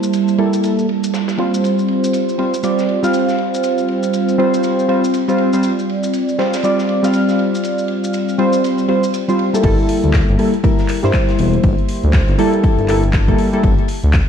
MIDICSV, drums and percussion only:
0, 0, Header, 1, 2, 480
1, 0, Start_track
1, 0, Tempo, 500000
1, 1572, Time_signature, 4, 2, 24, 8
1, 13716, End_track
2, 0, Start_track
2, 0, Title_t, "Drums"
2, 29, Note_on_c, 9, 70, 85
2, 125, Note_off_c, 9, 70, 0
2, 127, Note_on_c, 9, 51, 86
2, 127, Note_on_c, 9, 70, 59
2, 223, Note_off_c, 9, 51, 0
2, 223, Note_off_c, 9, 70, 0
2, 269, Note_on_c, 9, 70, 38
2, 274, Note_on_c, 9, 51, 46
2, 365, Note_off_c, 9, 70, 0
2, 367, Note_off_c, 9, 51, 0
2, 367, Note_on_c, 9, 51, 68
2, 463, Note_off_c, 9, 51, 0
2, 511, Note_on_c, 9, 70, 72
2, 607, Note_off_c, 9, 70, 0
2, 609, Note_on_c, 9, 51, 81
2, 610, Note_on_c, 9, 70, 64
2, 705, Note_off_c, 9, 51, 0
2, 706, Note_off_c, 9, 70, 0
2, 756, Note_on_c, 9, 70, 37
2, 852, Note_off_c, 9, 70, 0
2, 853, Note_on_c, 9, 51, 58
2, 949, Note_off_c, 9, 51, 0
2, 996, Note_on_c, 9, 70, 77
2, 1088, Note_on_c, 9, 51, 76
2, 1092, Note_off_c, 9, 70, 0
2, 1092, Note_on_c, 9, 38, 102
2, 1097, Note_on_c, 9, 70, 59
2, 1184, Note_off_c, 9, 51, 0
2, 1188, Note_off_c, 9, 38, 0
2, 1193, Note_off_c, 9, 70, 0
2, 1230, Note_on_c, 9, 38, 111
2, 1234, Note_on_c, 9, 51, 78
2, 1236, Note_on_c, 9, 70, 39
2, 1326, Note_off_c, 9, 38, 0
2, 1328, Note_off_c, 9, 51, 0
2, 1328, Note_on_c, 9, 51, 69
2, 1332, Note_off_c, 9, 70, 0
2, 1424, Note_off_c, 9, 51, 0
2, 1479, Note_on_c, 9, 51, 41
2, 1480, Note_on_c, 9, 70, 82
2, 1574, Note_off_c, 9, 51, 0
2, 1574, Note_on_c, 9, 51, 81
2, 1576, Note_off_c, 9, 70, 0
2, 1580, Note_on_c, 9, 70, 62
2, 1670, Note_off_c, 9, 51, 0
2, 1676, Note_off_c, 9, 70, 0
2, 1717, Note_on_c, 9, 70, 41
2, 1809, Note_on_c, 9, 51, 59
2, 1813, Note_off_c, 9, 70, 0
2, 1905, Note_off_c, 9, 51, 0
2, 1959, Note_on_c, 9, 70, 78
2, 2048, Note_on_c, 9, 51, 83
2, 2055, Note_off_c, 9, 70, 0
2, 2056, Note_on_c, 9, 70, 59
2, 2144, Note_off_c, 9, 51, 0
2, 2152, Note_off_c, 9, 70, 0
2, 2198, Note_on_c, 9, 70, 35
2, 2292, Note_on_c, 9, 51, 66
2, 2294, Note_off_c, 9, 70, 0
2, 2388, Note_off_c, 9, 51, 0
2, 2437, Note_on_c, 9, 70, 69
2, 2528, Note_off_c, 9, 70, 0
2, 2528, Note_on_c, 9, 70, 71
2, 2530, Note_on_c, 9, 51, 88
2, 2624, Note_off_c, 9, 70, 0
2, 2626, Note_off_c, 9, 51, 0
2, 2675, Note_on_c, 9, 38, 57
2, 2676, Note_on_c, 9, 70, 39
2, 2771, Note_off_c, 9, 38, 0
2, 2771, Note_on_c, 9, 51, 66
2, 2772, Note_off_c, 9, 70, 0
2, 2867, Note_off_c, 9, 51, 0
2, 2906, Note_on_c, 9, 38, 49
2, 2916, Note_on_c, 9, 70, 77
2, 3002, Note_off_c, 9, 38, 0
2, 3010, Note_off_c, 9, 70, 0
2, 3010, Note_on_c, 9, 70, 69
2, 3012, Note_on_c, 9, 51, 84
2, 3106, Note_off_c, 9, 70, 0
2, 3108, Note_off_c, 9, 51, 0
2, 3154, Note_on_c, 9, 38, 56
2, 3155, Note_on_c, 9, 70, 40
2, 3248, Note_on_c, 9, 51, 61
2, 3250, Note_off_c, 9, 38, 0
2, 3251, Note_off_c, 9, 70, 0
2, 3344, Note_off_c, 9, 51, 0
2, 3402, Note_on_c, 9, 70, 81
2, 3491, Note_off_c, 9, 70, 0
2, 3491, Note_on_c, 9, 51, 79
2, 3491, Note_on_c, 9, 70, 66
2, 3587, Note_off_c, 9, 51, 0
2, 3587, Note_off_c, 9, 70, 0
2, 3631, Note_on_c, 9, 70, 37
2, 3727, Note_off_c, 9, 70, 0
2, 3730, Note_on_c, 9, 51, 64
2, 3826, Note_off_c, 9, 51, 0
2, 3870, Note_on_c, 9, 70, 69
2, 3966, Note_off_c, 9, 70, 0
2, 3969, Note_on_c, 9, 51, 78
2, 3972, Note_on_c, 9, 70, 58
2, 4065, Note_off_c, 9, 51, 0
2, 4068, Note_off_c, 9, 70, 0
2, 4112, Note_on_c, 9, 51, 39
2, 4115, Note_on_c, 9, 70, 38
2, 4208, Note_off_c, 9, 51, 0
2, 4211, Note_off_c, 9, 70, 0
2, 4219, Note_on_c, 9, 51, 68
2, 4315, Note_off_c, 9, 51, 0
2, 4358, Note_on_c, 9, 70, 66
2, 4448, Note_off_c, 9, 70, 0
2, 4448, Note_on_c, 9, 70, 61
2, 4454, Note_on_c, 9, 51, 93
2, 4544, Note_off_c, 9, 70, 0
2, 4550, Note_off_c, 9, 51, 0
2, 4600, Note_on_c, 9, 70, 36
2, 4694, Note_on_c, 9, 51, 63
2, 4696, Note_off_c, 9, 70, 0
2, 4790, Note_off_c, 9, 51, 0
2, 4840, Note_on_c, 9, 70, 77
2, 4930, Note_on_c, 9, 51, 89
2, 4933, Note_off_c, 9, 70, 0
2, 4933, Note_on_c, 9, 70, 59
2, 5026, Note_off_c, 9, 51, 0
2, 5029, Note_off_c, 9, 70, 0
2, 5072, Note_on_c, 9, 51, 45
2, 5078, Note_on_c, 9, 70, 37
2, 5167, Note_off_c, 9, 51, 0
2, 5167, Note_on_c, 9, 51, 63
2, 5174, Note_off_c, 9, 70, 0
2, 5263, Note_off_c, 9, 51, 0
2, 5309, Note_on_c, 9, 70, 69
2, 5313, Note_on_c, 9, 51, 41
2, 5405, Note_off_c, 9, 70, 0
2, 5405, Note_on_c, 9, 70, 59
2, 5409, Note_off_c, 9, 51, 0
2, 5415, Note_on_c, 9, 51, 89
2, 5501, Note_off_c, 9, 70, 0
2, 5511, Note_off_c, 9, 51, 0
2, 5557, Note_on_c, 9, 70, 37
2, 5653, Note_off_c, 9, 70, 0
2, 5657, Note_on_c, 9, 51, 68
2, 5753, Note_off_c, 9, 51, 0
2, 5790, Note_on_c, 9, 70, 74
2, 5886, Note_off_c, 9, 70, 0
2, 5886, Note_on_c, 9, 51, 85
2, 5890, Note_on_c, 9, 70, 56
2, 5982, Note_off_c, 9, 51, 0
2, 5986, Note_off_c, 9, 70, 0
2, 6034, Note_on_c, 9, 70, 35
2, 6130, Note_off_c, 9, 70, 0
2, 6132, Note_on_c, 9, 38, 105
2, 6133, Note_on_c, 9, 51, 74
2, 6228, Note_off_c, 9, 38, 0
2, 6229, Note_off_c, 9, 51, 0
2, 6273, Note_on_c, 9, 51, 83
2, 6273, Note_on_c, 9, 70, 76
2, 6276, Note_on_c, 9, 38, 110
2, 6360, Note_off_c, 9, 51, 0
2, 6360, Note_on_c, 9, 51, 77
2, 6369, Note_off_c, 9, 70, 0
2, 6372, Note_off_c, 9, 38, 0
2, 6373, Note_on_c, 9, 70, 65
2, 6456, Note_off_c, 9, 51, 0
2, 6469, Note_off_c, 9, 70, 0
2, 6510, Note_on_c, 9, 38, 53
2, 6521, Note_on_c, 9, 70, 34
2, 6606, Note_off_c, 9, 38, 0
2, 6611, Note_on_c, 9, 51, 67
2, 6617, Note_off_c, 9, 70, 0
2, 6707, Note_off_c, 9, 51, 0
2, 6751, Note_on_c, 9, 38, 39
2, 6759, Note_on_c, 9, 70, 79
2, 6847, Note_off_c, 9, 38, 0
2, 6848, Note_off_c, 9, 70, 0
2, 6848, Note_on_c, 9, 70, 63
2, 6849, Note_on_c, 9, 51, 96
2, 6944, Note_off_c, 9, 70, 0
2, 6945, Note_off_c, 9, 51, 0
2, 6993, Note_on_c, 9, 38, 48
2, 6994, Note_on_c, 9, 70, 38
2, 7089, Note_off_c, 9, 38, 0
2, 7090, Note_off_c, 9, 70, 0
2, 7093, Note_on_c, 9, 51, 62
2, 7189, Note_off_c, 9, 51, 0
2, 7245, Note_on_c, 9, 70, 73
2, 7328, Note_on_c, 9, 51, 83
2, 7340, Note_off_c, 9, 70, 0
2, 7340, Note_on_c, 9, 70, 59
2, 7424, Note_off_c, 9, 51, 0
2, 7436, Note_off_c, 9, 70, 0
2, 7472, Note_on_c, 9, 70, 38
2, 7564, Note_on_c, 9, 51, 65
2, 7568, Note_off_c, 9, 70, 0
2, 7660, Note_off_c, 9, 51, 0
2, 7717, Note_on_c, 9, 70, 75
2, 7809, Note_off_c, 9, 70, 0
2, 7809, Note_on_c, 9, 70, 57
2, 7813, Note_on_c, 9, 51, 81
2, 7905, Note_off_c, 9, 70, 0
2, 7909, Note_off_c, 9, 51, 0
2, 7955, Note_on_c, 9, 70, 37
2, 7958, Note_on_c, 9, 51, 43
2, 8051, Note_off_c, 9, 51, 0
2, 8051, Note_off_c, 9, 70, 0
2, 8051, Note_on_c, 9, 51, 74
2, 8147, Note_off_c, 9, 51, 0
2, 8187, Note_on_c, 9, 70, 77
2, 8283, Note_off_c, 9, 70, 0
2, 8296, Note_on_c, 9, 51, 91
2, 8299, Note_on_c, 9, 70, 61
2, 8392, Note_off_c, 9, 51, 0
2, 8395, Note_off_c, 9, 70, 0
2, 8431, Note_on_c, 9, 70, 35
2, 8527, Note_off_c, 9, 70, 0
2, 8529, Note_on_c, 9, 51, 58
2, 8625, Note_off_c, 9, 51, 0
2, 8672, Note_on_c, 9, 70, 74
2, 8768, Note_off_c, 9, 70, 0
2, 8770, Note_on_c, 9, 51, 90
2, 8772, Note_on_c, 9, 70, 63
2, 8866, Note_off_c, 9, 51, 0
2, 8868, Note_off_c, 9, 70, 0
2, 8911, Note_on_c, 9, 51, 45
2, 8917, Note_on_c, 9, 70, 36
2, 9007, Note_off_c, 9, 51, 0
2, 9012, Note_on_c, 9, 51, 66
2, 9013, Note_off_c, 9, 70, 0
2, 9108, Note_off_c, 9, 51, 0
2, 9155, Note_on_c, 9, 51, 44
2, 9162, Note_on_c, 9, 70, 79
2, 9246, Note_off_c, 9, 51, 0
2, 9246, Note_on_c, 9, 51, 86
2, 9251, Note_on_c, 9, 36, 115
2, 9252, Note_on_c, 9, 42, 70
2, 9252, Note_on_c, 9, 49, 104
2, 9258, Note_off_c, 9, 70, 0
2, 9342, Note_off_c, 9, 51, 0
2, 9347, Note_off_c, 9, 36, 0
2, 9348, Note_off_c, 9, 42, 0
2, 9348, Note_off_c, 9, 49, 0
2, 9395, Note_on_c, 9, 42, 38
2, 9489, Note_on_c, 9, 51, 72
2, 9491, Note_off_c, 9, 42, 0
2, 9491, Note_on_c, 9, 46, 106
2, 9585, Note_off_c, 9, 51, 0
2, 9587, Note_off_c, 9, 46, 0
2, 9634, Note_on_c, 9, 42, 57
2, 9729, Note_on_c, 9, 39, 127
2, 9730, Note_off_c, 9, 42, 0
2, 9731, Note_on_c, 9, 36, 118
2, 9731, Note_on_c, 9, 42, 72
2, 9732, Note_on_c, 9, 51, 97
2, 9735, Note_on_c, 9, 38, 116
2, 9825, Note_off_c, 9, 39, 0
2, 9827, Note_off_c, 9, 36, 0
2, 9827, Note_off_c, 9, 42, 0
2, 9828, Note_off_c, 9, 51, 0
2, 9831, Note_off_c, 9, 38, 0
2, 9875, Note_on_c, 9, 42, 39
2, 9971, Note_off_c, 9, 42, 0
2, 9972, Note_on_c, 9, 46, 93
2, 9972, Note_on_c, 9, 51, 67
2, 10068, Note_off_c, 9, 46, 0
2, 10068, Note_off_c, 9, 51, 0
2, 10114, Note_on_c, 9, 42, 56
2, 10210, Note_off_c, 9, 42, 0
2, 10211, Note_on_c, 9, 36, 120
2, 10212, Note_on_c, 9, 42, 68
2, 10214, Note_on_c, 9, 51, 85
2, 10307, Note_off_c, 9, 36, 0
2, 10308, Note_off_c, 9, 42, 0
2, 10310, Note_off_c, 9, 51, 0
2, 10349, Note_on_c, 9, 38, 48
2, 10355, Note_on_c, 9, 42, 40
2, 10445, Note_off_c, 9, 38, 0
2, 10449, Note_on_c, 9, 39, 67
2, 10451, Note_off_c, 9, 42, 0
2, 10451, Note_on_c, 9, 46, 105
2, 10455, Note_on_c, 9, 51, 69
2, 10545, Note_off_c, 9, 39, 0
2, 10547, Note_off_c, 9, 46, 0
2, 10551, Note_off_c, 9, 51, 0
2, 10594, Note_on_c, 9, 42, 54
2, 10595, Note_on_c, 9, 38, 46
2, 10686, Note_off_c, 9, 38, 0
2, 10686, Note_on_c, 9, 38, 107
2, 10689, Note_on_c, 9, 39, 122
2, 10690, Note_off_c, 9, 42, 0
2, 10691, Note_on_c, 9, 36, 123
2, 10692, Note_on_c, 9, 42, 69
2, 10694, Note_on_c, 9, 51, 94
2, 10782, Note_off_c, 9, 38, 0
2, 10785, Note_off_c, 9, 39, 0
2, 10787, Note_off_c, 9, 36, 0
2, 10788, Note_off_c, 9, 42, 0
2, 10790, Note_off_c, 9, 51, 0
2, 10829, Note_on_c, 9, 38, 52
2, 10834, Note_on_c, 9, 42, 41
2, 10925, Note_off_c, 9, 38, 0
2, 10930, Note_off_c, 9, 42, 0
2, 10931, Note_on_c, 9, 46, 94
2, 10934, Note_on_c, 9, 51, 71
2, 11027, Note_off_c, 9, 46, 0
2, 11030, Note_off_c, 9, 51, 0
2, 11074, Note_on_c, 9, 42, 56
2, 11169, Note_on_c, 9, 51, 86
2, 11170, Note_off_c, 9, 42, 0
2, 11171, Note_on_c, 9, 36, 124
2, 11172, Note_on_c, 9, 42, 68
2, 11265, Note_off_c, 9, 51, 0
2, 11267, Note_off_c, 9, 36, 0
2, 11268, Note_off_c, 9, 42, 0
2, 11314, Note_on_c, 9, 42, 37
2, 11409, Note_on_c, 9, 51, 68
2, 11410, Note_off_c, 9, 42, 0
2, 11412, Note_on_c, 9, 46, 113
2, 11505, Note_off_c, 9, 51, 0
2, 11508, Note_off_c, 9, 46, 0
2, 11555, Note_on_c, 9, 42, 56
2, 11646, Note_on_c, 9, 51, 91
2, 11649, Note_on_c, 9, 39, 127
2, 11651, Note_off_c, 9, 42, 0
2, 11651, Note_on_c, 9, 36, 127
2, 11652, Note_on_c, 9, 42, 69
2, 11659, Note_on_c, 9, 38, 113
2, 11742, Note_off_c, 9, 51, 0
2, 11745, Note_off_c, 9, 39, 0
2, 11747, Note_off_c, 9, 36, 0
2, 11748, Note_off_c, 9, 42, 0
2, 11755, Note_off_c, 9, 38, 0
2, 11789, Note_on_c, 9, 51, 46
2, 11795, Note_on_c, 9, 42, 36
2, 11885, Note_off_c, 9, 51, 0
2, 11891, Note_off_c, 9, 42, 0
2, 11891, Note_on_c, 9, 51, 67
2, 11892, Note_on_c, 9, 46, 94
2, 11987, Note_off_c, 9, 51, 0
2, 11988, Note_off_c, 9, 46, 0
2, 12035, Note_on_c, 9, 42, 56
2, 12131, Note_off_c, 9, 42, 0
2, 12131, Note_on_c, 9, 36, 122
2, 12132, Note_on_c, 9, 42, 67
2, 12132, Note_on_c, 9, 51, 92
2, 12227, Note_off_c, 9, 36, 0
2, 12228, Note_off_c, 9, 42, 0
2, 12228, Note_off_c, 9, 51, 0
2, 12275, Note_on_c, 9, 42, 37
2, 12370, Note_on_c, 9, 39, 66
2, 12371, Note_off_c, 9, 42, 0
2, 12373, Note_on_c, 9, 46, 110
2, 12376, Note_on_c, 9, 51, 69
2, 12466, Note_off_c, 9, 39, 0
2, 12469, Note_off_c, 9, 46, 0
2, 12472, Note_off_c, 9, 51, 0
2, 12515, Note_on_c, 9, 42, 54
2, 12610, Note_on_c, 9, 39, 127
2, 12611, Note_off_c, 9, 42, 0
2, 12612, Note_on_c, 9, 36, 125
2, 12613, Note_on_c, 9, 38, 105
2, 12613, Note_on_c, 9, 42, 67
2, 12615, Note_on_c, 9, 51, 82
2, 12706, Note_off_c, 9, 39, 0
2, 12708, Note_off_c, 9, 36, 0
2, 12709, Note_off_c, 9, 38, 0
2, 12709, Note_off_c, 9, 42, 0
2, 12711, Note_off_c, 9, 51, 0
2, 12754, Note_on_c, 9, 36, 65
2, 12756, Note_on_c, 9, 42, 41
2, 12850, Note_off_c, 9, 36, 0
2, 12852, Note_off_c, 9, 42, 0
2, 12852, Note_on_c, 9, 46, 99
2, 12864, Note_on_c, 9, 51, 69
2, 12948, Note_off_c, 9, 46, 0
2, 12960, Note_off_c, 9, 51, 0
2, 12996, Note_on_c, 9, 42, 53
2, 13092, Note_off_c, 9, 42, 0
2, 13092, Note_on_c, 9, 36, 124
2, 13092, Note_on_c, 9, 51, 87
2, 13093, Note_on_c, 9, 42, 66
2, 13188, Note_off_c, 9, 36, 0
2, 13188, Note_off_c, 9, 51, 0
2, 13189, Note_off_c, 9, 42, 0
2, 13236, Note_on_c, 9, 42, 35
2, 13326, Note_on_c, 9, 51, 68
2, 13332, Note_off_c, 9, 42, 0
2, 13333, Note_on_c, 9, 46, 115
2, 13422, Note_off_c, 9, 51, 0
2, 13429, Note_off_c, 9, 46, 0
2, 13476, Note_on_c, 9, 42, 54
2, 13567, Note_on_c, 9, 38, 127
2, 13570, Note_on_c, 9, 39, 127
2, 13572, Note_off_c, 9, 42, 0
2, 13572, Note_on_c, 9, 36, 124
2, 13573, Note_on_c, 9, 42, 69
2, 13573, Note_on_c, 9, 51, 85
2, 13663, Note_off_c, 9, 38, 0
2, 13666, Note_off_c, 9, 39, 0
2, 13668, Note_off_c, 9, 36, 0
2, 13669, Note_off_c, 9, 42, 0
2, 13669, Note_off_c, 9, 51, 0
2, 13716, End_track
0, 0, End_of_file